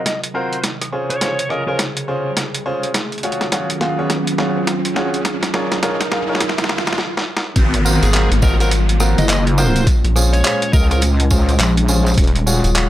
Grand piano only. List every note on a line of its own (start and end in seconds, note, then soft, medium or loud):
0.35 0.56 C4 medium
0.35 0.56 F4 medium
0.35 0.56 F#4 medium
0.35 0.56 A#4 loud
0.92 1.13 C#4 medium
0.92 1.13 F4 medium
0.92 1.13 G#4 medium
0.92 1.13 C5 medium
1.21 1.36 C#4 medium
1.21 1.36 F4 medium
1.21 1.36 G#4 medium
1.21 1.36 C5 loud
1.50 1.65 C#4 medium
1.50 1.65 F4 medium
1.50 1.65 G#4 medium
1.50 1.65 D#5 medium
1.68 1.77 C#4 medium
1.68 1.77 F4 medium
1.68 1.77 G#4 medium
1.68 1.77 C5 loud
2.08 2.29 C#4 medium
2.08 2.29 F4 medium
2.08 2.29 G#4 medium
2.08 2.29 C5 loud
2.66 2.87 C#4 loud
2.66 2.87 F4 medium
2.66 2.87 G#4 medium
2.66 2.87 C5 loud
3.23 3.44 F4 medium
3.23 3.44 F#4 medium
3.23 3.44 G#4 medium
3.23 3.44 C#5 loud
3.52 3.66 F4 medium
3.52 3.66 F#4 medium
3.52 3.66 G#4 medium
3.52 3.66 C#5 loud
3.81 3.95 F4 medium
3.81 3.95 F#4 medium
3.81 3.95 G#4 medium
3.81 3.95 F5 medium
3.99 4.08 F4 medium
3.99 4.08 F#4 medium
3.99 4.08 G#4 medium
3.99 4.08 C#5 loud
4.39 4.60 F4 medium
4.39 4.59 F#4 medium
4.39 4.59 G#4 medium
4.39 4.60 C#5 loud
4.96 5.17 F4 medium
4.96 5.17 F#4 medium
4.96 5.17 G#4 medium
4.96 5.17 C#5 loud
5.54 5.75 F4 medium
5.54 5.75 G#4 medium
5.54 5.75 A#4 medium
5.54 5.75 C#5 loud
5.83 5.97 F4 medium
5.83 5.97 G#4 medium
5.83 5.97 A#4 medium
5.83 5.97 C#5 loud
6.12 6.26 F4 medium
6.12 6.26 G#4 medium
6.12 6.26 A#4 medium
6.12 6.26 F5 medium
6.29 6.38 F4 medium
6.29 6.38 G#4 medium
6.29 6.38 A#4 medium
6.29 6.38 C#5 loud
7.85 8.06 C4 medium
7.85 8.06 F4 medium
7.85 8.06 F#4 medium
7.85 8.06 A#4 loud
8.14 8.28 C4 medium
8.14 8.28 F4 medium
8.14 8.28 F#4 medium
8.14 8.28 A#4 loud
8.43 8.57 C4 medium
8.43 8.57 F4 medium
8.43 8.57 F#4 medium
8.43 8.57 D#5 medium
8.60 8.69 C4 loud
8.60 8.69 F4 medium
8.60 8.69 F#4 medium
8.60 8.69 A#4 loud
9.00 9.21 C4 loud
9.00 9.21 F4 medium
9.00 9.21 F#4 medium
9.00 9.21 A#4 loud
9.58 9.79 C4 loud
9.58 9.79 F4 medium
9.58 9.79 F#4 medium
9.58 9.79 A#4 loud
10.16 10.37 C#4 medium
10.16 10.37 F4 medium
10.16 10.37 G#4 medium
10.16 10.37 C5 loud
10.44 10.59 C#4 medium
10.44 10.59 F4 medium
10.44 10.59 G#4 medium
10.44 10.59 C5 loud
10.73 10.88 C#4 medium
10.73 10.88 F4 medium
10.73 10.87 G#4 medium
10.73 10.87 D#5 medium
10.91 11.00 C#4 medium
10.91 11.00 F4 medium
10.91 11.00 G#4 medium
10.91 11.00 C5 loud
11.31 11.52 C#4 loud
11.31 11.52 F4 medium
11.31 11.52 G#4 medium
11.31 11.52 C5 loud
11.89 12.10 C#4 loud
11.89 12.10 F4 medium
11.89 12.10 G#4 medium
11.89 12.10 C5 loud
12.46 12.67 F4 medium
12.46 12.67 F#4 medium
12.46 12.67 G#4 medium
12.46 12.67 C#5 loud
12.75 12.89 F4 medium
12.75 12.89 F#4 medium
12.75 12.89 G#4 medium
12.75 12.89 C#5 loud